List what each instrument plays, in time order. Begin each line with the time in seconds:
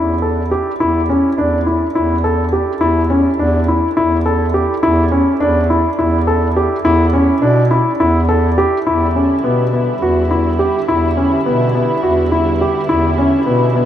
Already playing: bass clarinet E2, grand piano E4
0.22 grand piano A4
0.51 grand piano G4
0.79 bass clarinet E2, grand piano E4
1.09 grand piano C#4
1.37 bass clarinet E2, grand piano D4
1.67 grand piano E4
1.94 bass clarinet E2, grand piano E4
2.24 grand piano A4
2.53 grand piano G4
2.81 bass clarinet E2, grand piano E4
3.10 grand piano C#4
3.38 bass clarinet E2, grand piano D4
3.68 grand piano E4
3.96 bass clarinet E2, grand piano E4
4.26 grand piano A4
4.54 grand piano G4
4.82 bass clarinet E2, grand piano E4
5.12 grand piano C#4
5.39 bass clarinet E2, grand piano D4
5.70 grand piano E4
5.97 bass clarinet E2, grand piano E4
6.27 grand piano A4
6.57 grand piano G4
6.83 bass clarinet E2, grand piano E4
7.13 grand piano C#4
7.41 bass clarinet B2, grand piano D4
7.71 grand piano E4
7.99 bass clarinet E2, grand piano E4
8.29 grand piano A4
8.58 grand piano G4
8.86 bass clarinet E2, string section D3 G3 E4, grand piano E4
9.15 grand piano C#4
9.43 bass clarinet B2, grand piano B3
9.73 grand piano B3
10.00 bass clarinet E2, grand piano F#4
10.31 grand piano E4
10.59 grand piano G4
10.87 bass clarinet E2, grand piano E4
11.17 grand piano C#4
11.45 bass clarinet B2, grand piano B3
11.75 grand piano B3
12.03 bass clarinet E2, grand piano F#4
12.32 grand piano E4
12.61 grand piano G4
12.89 bass clarinet E2, grand piano E4
13.18 grand piano C#4
13.46 bass clarinet B2, grand piano B3
13.75 grand piano B3